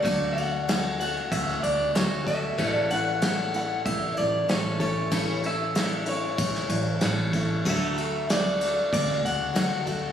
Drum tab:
CC |----------------|----------------|----------------|x---------------|
RD |x-x-x-x-x-x-x-x-|x-x-x-x-x-x-x-x-|x-x-x-x-x-x-x-x-|--x-x-x-x-x-x-x-|
SD |----o--o-o--o---|----o-------o-o-|----o----o--o-o-|----o----o--o---|
BD |o-------o-----o-|o-------o-----o-|o-------o-----o-|o-------o-----o-|